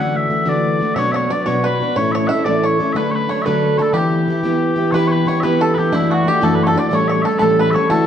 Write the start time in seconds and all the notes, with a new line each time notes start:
Already playing: D3 E3 A3 D4 F#4
0.00 F#5
0.17 E5
0.28 E3 A3 D4 F#4
0.45 D3 E3 A3 D4 F#4 D5
0.79 A3 D4 F#4
0.95 B2 F#3 B3 D4 F#4 C#5 E5
1.12 C#5 E5
1.16 C#5
1.30 F#3 B3 D4 F#4 D5
1.46 B2 F#3 B3 D4 F#4 C#5
1.64 B4
1.80 B3 D4 F#4
1.96 A2 E3 A3 C#4 E4 A4 C#5
2.12 C#5 E5
2.27 A3 C#4 E4 E5 F#5
2.32 A4
2.45 A2 E3 A3 C#4 E4 A4 D5
2.63 C#5
2.79 A3 C#4 E4 A4
2.93 D3 F#3 A3 D4 B4 E5
2.97 A4 B4
3.11 C#5
3.15 B4
3.29 F#3 A3 D4 A4 C#5
3.42 A4 B4 E5
3.46 D3 F#3 A3 D4
3.78 A3 D4 A4 C#5
3.93 E3 B3 E4 G4 B4
3.97 G4
4.28 E3 B3 E4 G4
4.43 E3 B3 E4 G4
4.76 B3 E4 G4
4.91 E3 B3 E4 G4 B4 C#5
5.07 C#5
5.12 B4
5.26 E3 B3 E4 G4 C#5
5.40 E4 G4 B4 E5
5.45 E3 B3
5.61 A4
5.74 E4 G4 B4
5.79 B3
5.92 F#2 E3 A3 D4 E4 F#4
6.11 F#4 A4
6.24 A3 D4 E4 F#4 G4
6.29 G4
6.41 F#2 E3 A3 D4 E4 F#4 A4
6.55 B4
6.63 A4 C#5
6.67 A4
6.73 A3 D4 E4 F#4
6.78 D5
6.90 A2 E3 G3 A3 C#4 A4 C#5
6.95 C#5
7.08 C#5 E5
7.22 G3 A3 C#4 A4 E5
7.27 A4
7.38 A2 E3 G3 A3 C#4 A4 B4
7.59 B4
7.71 C#4 A4 C#5 E5
7.75 G3 A3 C#5
7.89 D3 E3 A3 E4 F#4 A4